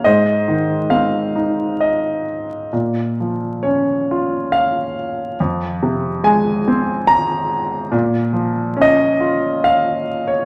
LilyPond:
<<
  \new Staff \with { instrumentName = "Grand piano" } { \time 3/4 \key bes \minor \tempo 4 = 69 << { ees''4 f''4 ees''8. r16 | r4 des''4 f''4 | r4 aes''4 bes''4 | r4 ees''4 f''8. des''16 | } \\ { c''4. r4. | r2. | r2. | r2. | } >> }
  \new Staff \with { instrumentName = "Grand piano" } { \clef bass \time 3/4 \key bes \minor aes,8 ees8 c'8 ees'4. | bes,8 f8 des'8 f'4. | f,8 c8 aes8 c'4. | bes,8 f8 des'8 f'4. | }
>>